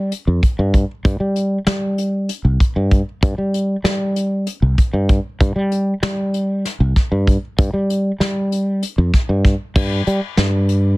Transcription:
Already playing: fretless electric bass G3
0.12 closed hi-hat
0.27 fretless electric bass F2
0.43 kick, closed hi-hat
0.59 fretless electric bass G2
0.74 kick, closed hi-hat
1.05 fretless electric bass G2, kick, closed hi-hat
1.20 fretless electric bass G3
1.36 closed hi-hat
1.67 fretless electric bass G3, snare, closed hi-hat
1.98 closed hi-hat
2.29 closed hi-hat
2.45 fretless electric bass C2
2.60 kick, closed hi-hat
2.76 fretless electric bass G2
2.91 kick, closed hi-hat
3.23 fretless electric bass G2, kick, closed hi-hat
3.38 fretless electric bass G3
3.54 closed hi-hat
3.84 fretless electric bass G3, snare, closed hi-hat
4.16 closed hi-hat
4.47 closed hi-hat
4.62 fretless electric bass C2
4.78 kick, closed hi-hat
4.93 fretless electric bass G2
5.09 kick, closed hi-hat
5.41 fretless electric bass G2, kick, closed hi-hat
5.56 fretless electric bass G3
5.72 closed hi-hat
6.03 fretless electric bass G3, snare, closed hi-hat
6.34 closed hi-hat
6.65 snare, closed hi-hat
6.80 fretless electric bass C2
6.96 kick, snare, closed hi-hat
7.12 fretless electric bass G2
7.27 kick, closed hi-hat
7.59 fretless electric bass G2, kick, closed hi-hat
7.73 fretless electric bass G3
7.90 closed hi-hat
8.20 fretless electric bass G3, snare, closed hi-hat
8.52 closed hi-hat
8.83 closed hi-hat
8.98 fretless electric bass F2
9.14 kick, snare, closed hi-hat
9.29 fretless electric bass G2
9.45 kick, snare, closed hi-hat
9.76 fretless electric bass G2, kick, crash
10.07 fretless electric bass G3, closed hi-hat
10.37 fretless electric bass G2, snare, closed hi-hat
10.69 closed hi-hat

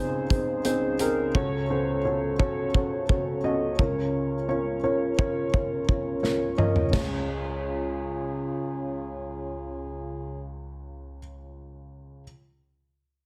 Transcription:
Already playing: upright piano C#2 C#3 C4 D#4 G#4 C5, french horn section C#3 C#4 G#4 C5
0.30 upright piano C4 D#4 G#4 C5, kick, closed hi-hat
0.65 upright piano C4 D#4 G#4 C5, closed hi-hat
0.99 upright piano C4 D#4 G#4 A#4, closed hi-hat
1.35 upright piano C#2 C#3 C#4 F#4 A4 C#5, french horn section F#4 A4, kick
1.70 upright piano C#4 F#4 A4 C5
2.05 upright piano C#4 F#4 A4 C#5
2.39 upright piano C#4 F#4 A4 C#5, kick
2.74 upright piano C#4 F#4 A4 C#5, kick
3.09 upright piano C#4 F#4 A4 C#5, kick
3.44 upright piano C#4 F#4 A4 D#5
3.78 upright piano C#2 C#3 C#4 F4 A#4 C#5, french horn section F4 A#4, kick
4.48 upright piano C#4 F4 A#4 C#5
4.84 upright piano C#4 F4 A#4 C#5
5.18 upright piano C#4 F4 A#4 C#5, kick
5.53 upright piano C#4 F4 A#4 C#5, kick
5.88 upright piano C#4 F4 A#4 C#5, kick
6.23 upright piano C#4 F4 A#4 C#5, snare
6.58 upright piano C#4 F4 A#4 D#5, mid tom
6.76 floor tom
6.90 upright piano C#2 C#4 F4 G#4, french horn section C#3 C#4 F4 G#4, kick, snare, crash
6.94 upright piano C#5

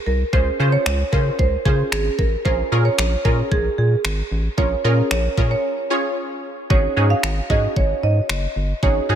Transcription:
0.06 analog synth bass C2, marimba A#4
0.33 analog synth bass C#2, synth pluck C#4 F4 G#4 C5, marimba C5, kick
0.60 analog synth bass C#3, synth pluck C#4 F4 G#4 C5
0.72 marimba C#5
0.86 analog synth bass C#2, finger snap
1.12 analog synth bass C#3, synth pluck C#4 F4 G#4 C5, marimba A#4, kick
1.39 analog synth bass C#2, marimba C5, kick
1.65 analog synth bass C#3, synth pluck C#4 F4 G#4 C5, marimba G#4, kick
1.92 analog synth bass G#1, marimba G#4, finger snap
2.19 analog synth bass A1, marimba A#4, kick
2.45 analog synth bass A#1, synth pluck C#4 F4 G#4 A#4, marimba C5, kick
2.72 analog synth bass A#2, synth pluck C#4 F4 G#4 A#4
2.85 marimba C#5
2.98 analog synth bass A#1, finger snap
3.25 analog synth bass A#2, synth pluck C#4 F4 G#4 A#4, marimba A#4, kick
3.52 analog synth bass A#1, marimba G#4, kick
3.78 analog synth bass A#2, marimba G#4
4.05 analog synth bass G#1, finger snap
4.31 analog synth bass A1
4.58 analog synth bass A#1, synth pluck C#4 F4 G#4 A#4, marimba C#5, kick
4.84 analog synth bass A#2, synth pluck C#4 F4 G#4 A#4, marimba A#4
5.11 analog synth bass A#1, marimba C#5, finger snap
5.37 analog synth bass A#2, synth pluck C#4 F4 G#4 A#4, kick
5.51 marimba C#5
5.90 synth pluck C#4 F4 G#4 C#5
6.70 analog synth bass G#1, synth pluck C#4 D#4 F#4 G#4, marimba C#5, kick
6.97 analog synth bass G#2, synth pluck C#4 D#4 F#4 G#4
7.10 marimba F5
7.23 analog synth bass G#1, finger snap
7.50 analog synth bass G#2, synth pluck C#4 D#4 F#4 G#4, marimba D#5, kick
7.76 analog synth bass G#1, marimba C#5, kick
8.03 analog synth bass G#2, marimba D#5
8.29 analog synth bass F#1, finger snap
8.56 analog synth bass G1
8.83 analog synth bass G#1, synth pluck C#4 D#4 F#4 G#4, marimba C#5, kick
9.09 analog synth bass G#2, synth pluck C#4 D#4 F#4 G#4

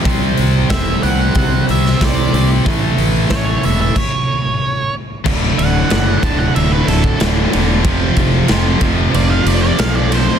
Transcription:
0.04 fingered electric bass C2, distorted electric guitar C3 G3 C4, kick, open hi-hat
0.37 fingered electric bass C2, open hi-hat
0.69 fingered electric bass E1, distorted electric guitar C3 G3 C4, lead electric guitar E5, kick, snare, open hi-hat
1.03 fingered electric bass C2, distorted electric guitar C3 G3 C4, lead electric guitar F#5, open hi-hat
1.35 fingered electric bass C2, distorted electric guitar C3 G3 C4, kick, open hi-hat
1.69 fingered electric bass C2, lead electric guitar E5, open hi-hat
1.86 snare
2.01 fingered electric bass C2, distorted electric guitar C3 G3 C4, lead electric guitar D5, kick, snare, open hi-hat
2.33 fingered electric bass C2, distorted electric guitar C3 G3 C4, open hi-hat
2.65 fingered electric bass A1, distorted electric guitar A2 E3 A3, kick, open hi-hat
2.98 fingered electric bass A1, open hi-hat
3.30 fingered electric bass A1, distorted electric guitar A2 E3 A3, lead electric guitar C#5, kick, snare, open hi-hat
3.63 fingered electric bass E1, distorted electric guitar A2 E3 A3, lead electric guitar E5, open hi-hat
3.81 lead electric guitar E5
3.96 lead electric guitar C#5, kick, crash
5.24 fingered electric bass D1, distorted electric guitar D2 A2 D3, kick, crash
5.58 fingered electric bass D1, lead electric guitar F#5, ride
5.90 fingered electric bass F#1, distorted electric guitar D2 A2 D3, snare, ride
6.23 fingered electric bass D1, distorted electric guitar D2 A2 D3, lead electric guitar A5, kick, ride
6.38 lead electric guitar F#5
6.54 fingered electric bass D1, distorted electric guitar D2 A2 D3, lead electric guitar E5, ride
6.72 lead electric guitar B4
6.87 fingered electric bass D1, lead electric guitar A4, ride
7.04 kick
7.19 fingered electric bass D1, distorted electric guitar D2 A2 D3, snare, ride
7.51 fingered electric bass E1, distorted electric guitar D2 A2 D3, ride
7.84 fingered electric bass F1, distorted electric guitar F2 C3 F3, kick, ride
8.17 fingered electric bass F1, kick, ride
8.48 fingered electric bass F1, distorted electric guitar F2 C3 F3, snare, ride
8.80 fingered electric bass F1, distorted electric guitar F2 C3 F3, kick, ride
9.12 fingered electric bass F1, distorted electric guitar F2 C3 F3, lead electric guitar D5, ride
9.30 lead electric guitar F5
9.46 fingered electric bass F1, lead electric guitar D5, ride
9.62 lead electric guitar D5
9.77 fingered electric bass B1, distorted electric guitar F2 C3 F3, lead electric guitar F5, snare, ride
9.95 lead electric guitar D5
10.09 distorted electric guitar F2 C3 F3, ride
10.13 lead electric guitar C5, snare

